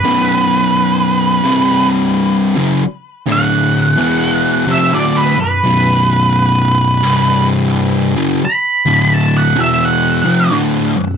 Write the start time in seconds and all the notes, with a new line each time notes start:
Already playing: B4
0.04 B1 F#2 B2
1.43 C2 G2 C3
2.57 F#2 C#3 F#3
2.84 muted distorted electric guitar stroke
3.27 D2 A2 D3
3.32 F#5
3.97 E2 B2 E3
4.67 F2 C3 F3
4.71 E5
4.93 D2 A2 D3 D5
5.17 B4
5.37 B1 F#2 B4
5.64 B1 F#2 B2
7.02 C2 G2 C3
8.16 F#2 C#3 F#3
8.42 B5, muted distorted electric guitar stroke
8.86 D2 A2 D3
9.14 A5
9.37 F#5
9.56 E2 B2 E3
9.60 E5
9.85 F#5
10.25 F2 C3 F3
10.52 D2 A2 D3
10.96 B1 F#2